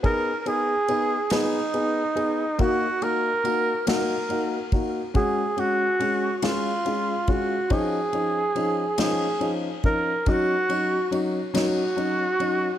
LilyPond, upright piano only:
\new Staff \with { instrumentName = "Upright piano" } { \time 6/8 \key cis \mixolydian \tempo 4. = 47 <b dis' gis'>8 <b dis' gis'>8 <b dis' gis'>8 <b dis' gis'>8 <b dis' gis'>8 <b dis' gis'>8 | <ais dis' fis'>8 <ais dis' fis'>8 <ais dis' fis'>8 <ais dis' fis'>8 <ais dis' fis'>8 <ais dis' fis'>8 | <gis cis' fis'>8 <gis cis' fis'>8 <gis cis' fis'>8 <gis cis' eis'>8 <gis cis' eis'>8 <gis cis' eis'>8 | <eis cis' dis'>8 <eis cis' dis'>8 <eis cis' dis'>8 <eis cis' dis'>8 <eis cis' dis'>8 <eis cis' dis'>8 |
<fis cis' dis'>8 <fis cis' dis'>8 <fis cis' dis'>8 <fis cis' dis'>8 <fis cis' dis'>8 <fis cis' dis'>8 | }